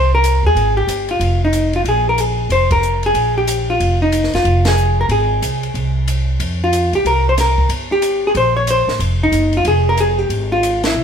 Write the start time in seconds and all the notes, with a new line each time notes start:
Already playing: C2 C5
0.15 A#4
0.24 hi-hat pedal, ride
0.43 D#2 G#4
0.55 G#1, ride
0.77 G4
0.87 G1, hi-hat pedal, ride
1.08 F4, ride
1.20 F1, ride
1.45 D#4
1.53 hi-hat pedal, ride
1.73 F4, ride
1.84 A#1, ride
1.89 G#4
2.09 A#4
2.18 G#4, hi-hat pedal, ride
2.49 F1 C5, ride
2.71 A#4, kick, ride
2.83 hi-hat pedal
3.03 G#4, ride
3.14 A#1, ride
3.38 G4
3.47 hi-hat pedal, ride
3.70 F4
3.80 F1, ride
4.02 D#4
4.12 hi-hat pedal, ride
4.24 snare
4.33 F#1 F4, snare, ride
4.45 F1, ride
4.65 G#4, snare, ride
4.77 hi-hat pedal
5.01 A#4
5.09 G#1 G#4, ride
5.42 C2, hi-hat pedal, ride
5.63 ride
5.74 C2, ride
6.08 hi-hat pedal, ride
6.40 F2, ride
6.64 F4
6.73 hi-hat pedal, ride
6.92 C#2 G4, ride
7.05 C2 A#4, ride
7.29 C5
7.38 A#4, snare, hi-hat pedal, ride
7.58 kick
7.69 G1, ride
7.92 G4
8.02 hi-hat pedal, ride
8.27 G#4
8.35 A#1 C5, ride
8.57 C#5
8.67 C5, hi-hat pedal, ride
8.87 A1, snare
8.99 F1, ride
9.23 D#4
9.32 F#1, hi-hat pedal, ride
9.53 ride
9.57 F4
9.65 F1 G#4, ride
9.89 A#4
9.97 G#4, hi-hat pedal, ride
10.18 G4
10.29 G#1, ride
10.52 F4
10.63 hi-hat pedal, ride
10.84 E4, snare, ride
10.95 C2